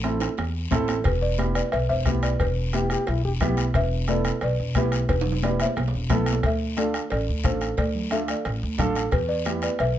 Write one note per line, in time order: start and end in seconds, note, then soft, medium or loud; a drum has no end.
0.00 0.25 A1 loud
0.00 0.28 C4 medium
0.00 0.66 A4 medium
0.00 bombo rim medium
0.00 high timbale medium
0.00 short guiro medium
0.04 0.28 E4 medium
0.04 0.29 A4 medium
0.04 high conga medium
0.20 bombo rim medium
0.20 high timbale medium
0.20 short guiro medium
0.37 0.66 E2 medium
0.37 bombo rim medium
0.37 high conga soft
0.37 low timbale medium
0.37 long guiro medium
0.71 0.99 A1 medium
0.71 0.95 C4 medium
0.71 0.95 E4 medium
0.71 0.96 A4 loud
0.71 bombo low medium
0.71 bombo rim medium
0.71 high conga medium
0.71 low timbale loud
0.71 short guiro medium
0.88 bombo rim medium
0.88 low timbale medium
0.88 short guiro medium
1.04 1.59 E1 loud
1.04 1.14 G4 medium
1.04 1.14 B4 medium
1.04 bombo low medium
1.04 bombo rim medium
1.04 cowbell loud
1.04 high conga soft
1.04 long guiro medium
1.21 1.53 B4 medium
1.21 1.54 D5 medium
1.38 1.62 B3 medium
1.38 1.62 E4 medium
1.38 1.63 G4 medium
1.38 bombo rim medium
1.38 cowbell medium
1.38 high conga medium
1.38 short guiro medium
1.55 1.71 B4 medium
1.55 1.72 D5 medium
1.55 bombo rim medium
1.55 short guiro medium
1.72 1.87 B1 loud
1.72 1.80 B4 medium
1.72 1.80 E5 loud
1.72 bombo rim medium
1.72 cowbell medium
1.72 high conga soft
1.72 long guiro medium
1.89 2.03 E1 medium
1.89 2.21 C5 medium
1.89 2.21 E5 loud
2.06 2.33 B1 medium
2.06 2.30 B3 medium
2.06 2.30 E4 medium
2.06 2.30 G4 medium
2.06 bombo low medium
2.06 bombo rim medium
2.06 cowbell medium
2.06 high conga medium
2.06 short guiro medium
2.23 2.31 B4 medium
2.23 2.31 D5 medium
2.23 bombo rim medium
2.23 short guiro medium
2.39 2.94 E1 loud
2.39 3.37 G4 medium
2.39 3.37 B4 medium
2.39 bombo low medium
2.39 bombo rim medium
2.39 cowbell medium
2.39 long guiro medium
2.73 2.97 B3 medium
2.73 2.97 E4 medium
2.73 2.89 G4 medium
2.73 2.98 G4 medium
2.73 bombo rim medium
2.73 cowbell medium
2.73 high conga medium
2.73 short guiro medium
2.90 3.10 G4 loud
2.90 bombo rim medium
2.90 short guiro medium
3.07 3.21 B1 loud
3.07 3.24 E4 medium
3.07 bombo rim medium
3.07 cowbell medium
3.07 long guiro medium
3.25 3.38 E1 medium
3.25 3.32 G4 medium
3.41 3.68 B1 medium
3.41 3.65 B3 medium
3.41 3.65 E4 medium
3.41 3.65 G4 medium
3.41 bombo low medium
3.41 bombo rim medium
3.41 cowbell medium
3.41 high conga medium
3.41 low conga medium
3.41 short guiro medium
3.57 bombo rim medium
3.57 short guiro medium
3.74 4.28 E1 loud
3.74 4.07 B4 medium
3.74 4.07 E5 loud
3.74 bombo low medium
3.74 bombo rim medium
3.74 cowbell loud
3.74 high conga soft
3.74 long guiro medium
4.08 4.32 B3 medium
4.08 4.32 E4 medium
4.08 4.32 A4 medium
4.08 4.40 B4 medium
4.08 4.40 D5 loud
4.08 bombo rim medium
4.08 cowbell medium
4.08 high conga medium
4.08 short guiro medium
4.25 bombo rim medium
4.25 short guiro medium
4.41 4.56 B1 loud
4.41 4.74 B4 medium
4.41 4.74 D5 loud
4.41 bombo rim medium
4.41 cowbell medium
4.41 high conga soft
4.41 long guiro medium
4.59 4.73 E1 medium
4.75 5.02 B1 medium
4.75 5.00 B3 medium
4.75 5.00 E4 medium
4.75 5.08 G4 medium
4.75 5.00 G4 medium
4.75 5.07 B4 medium
4.75 bombo low medium
4.75 bombo rim medium
4.75 cowbell medium
4.75 high conga medium
4.75 short guiro medium
4.92 bombo rim medium
4.92 short guiro medium
5.09 5.63 E1 loud
5.09 5.41 G4 medium
5.09 5.44 B4 medium
5.09 bombo low medium
5.09 bombo rim medium
5.09 cowbell medium
5.09 high conga soft
5.09 high timbale medium
5.09 long guiro medium
5.21 high timbale medium
5.26 low conga medium
5.32 high timbale medium
5.43 5.67 B3 medium
5.43 5.67 E4 medium
5.43 5.67 G4 medium
5.43 5.60 B4 medium
5.43 5.59 D5 medium
5.43 bombo rim medium
5.43 cowbell medium
5.43 high conga medium
5.43 high timbale loud
5.43 short guiro medium
5.60 5.92 C5 medium
5.60 5.92 E5 medium
5.60 bombo rim medium
5.60 short guiro medium
5.66 low timbale medium
5.76 5.90 B1 loud
5.76 bombo rim medium
5.76 cowbell medium
5.76 high conga soft
5.76 low timbale loud
5.76 long guiro medium
5.88 low timbale medium
5.94 6.07 E1 medium
6.09 6.37 B1 medium
6.09 6.33 B3 medium
6.09 6.34 E4 medium
6.09 6.34 A4 medium
6.09 bombo low medium
6.09 bombo rim medium
6.09 cowbell medium
6.09 high conga medium
6.09 low conga medium
6.09 low timbale medium
6.09 short guiro medium
6.26 bombo rim medium
6.26 short guiro medium
6.33 low timbale medium
6.43 6.98 D2 loud
6.43 6.76 A4 medium
6.43 6.76 E5 medium
6.43 bombo low medium
6.43 bombo rim medium
6.43 cowbell loud
6.43 high conga soft
6.43 long guiro medium
6.77 7.01 D4 medium
6.77 7.01 F4 medium
6.77 7.01 A4 medium
6.77 7.09 A4 medium
6.77 7.09 D5 medium
6.77 bombo rim medium
6.77 cowbell medium
6.77 high conga medium
6.77 short guiro medium
6.94 bombo rim medium
6.94 short guiro medium
7.10 7.25 A1 loud
7.10 7.43 A4 medium
7.10 7.43 D5 medium
7.10 bombo rim medium
7.10 cowbell medium
7.10 high conga soft
7.10 long guiro medium
7.29 7.42 D2 medium
7.44 7.72 A1 medium
7.44 7.68 D4 medium
7.44 7.68 F4 medium
7.44 7.68 A4 medium
7.44 7.76 A4 medium
7.44 7.76 C5 medium
7.44 bombo low medium
7.44 bombo rim medium
7.44 cowbell medium
7.44 high conga medium
7.44 low timbale medium
7.44 short guiro medium
7.61 bombo rim medium
7.61 short guiro medium
7.77 8.32 D2 loud
7.77 8.10 A4 medium
7.77 8.13 D5 medium
7.77 bombo low medium
7.77 bombo rim medium
7.77 cowbell loud
7.77 high conga soft
7.77 long guiro medium
7.95 low conga medium
8.11 8.35 D4 medium
8.11 8.35 F4 medium
8.11 8.36 A4 medium
8.11 8.20 A4 medium
8.11 8.19 E5 loud
8.11 bombo rim medium
8.11 cowbell medium
8.11 high conga medium
8.11 short guiro medium
8.28 8.61 D5 medium
8.28 8.60 F5 medium
8.28 bombo rim medium
8.28 short guiro medium
8.45 8.59 A1 loud
8.45 bombo rim medium
8.45 cowbell medium
8.45 long guiro medium
8.63 8.76 D2 medium
8.78 9.06 A1 medium
8.78 9.02 D4 medium
8.78 9.03 F4 medium
8.78 9.03 A4 loud
8.78 bombo low medium
8.78 bombo rim medium
8.78 cowbell medium
8.78 high conga medium
8.78 low conga medium
8.78 low timbale medium
8.78 short guiro medium
8.95 bombo rim medium
8.95 short guiro medium
9.11 9.66 E2 loud
9.11 9.28 G4 medium
9.11 9.27 B4 loud
9.11 bombo low medium
9.11 bombo rim medium
9.11 cowbell medium
9.11 high conga soft
9.11 long guiro medium
9.29 9.60 B4 medium
9.29 9.60 D5 loud
9.45 9.70 B3 medium
9.45 9.70 E4 medium
9.45 9.70 G4 medium
9.45 bombo rim medium
9.45 cowbell medium
9.45 high conga medium
9.45 short guiro medium
9.62 9.79 B4 medium
9.62 9.81 D5 medium
9.62 bombo rim medium
9.62 short guiro medium
9.79 9.93 B1 loud
9.79 9.99 B4 medium
9.79 9.99 E5 loud
9.79 bombo rim medium
9.79 cowbell medium
9.79 high conga soft
9.79 long guiro medium